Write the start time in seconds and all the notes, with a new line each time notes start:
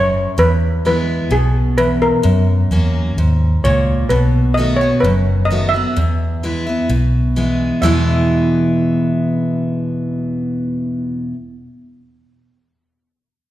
Already playing: F#1 F#2 C#5
0.38 E2 B4
0.85 E3 G#3 B3 E4 B4
1.31 B1 B2 G#4
1.78 E2 B4
2.02 A#4
2.23 F#2
2.71 E2 F#3 A#3 C#4 F#4
3.17 D#2 G#2
3.64 C#2 A#2 C#5
4.09 B1 B2 B4
4.54 D#3 A3 D#5
4.59 B3 F#4
4.76 C#5
4.81 B3 F#4
5.00 F#1 F#2 B4
5.45 D#5
5.50 D#3 A3 B3 F#4
5.69 E5
5.74 B3 F#4
5.96 E2
6.43 E3 G#3 B3 E4
6.67 B3 E4
6.89 B1 B2
7.36 E3 G#3 B3 E4
7.82 E2 B2 E3 G#3 B3 E4 E5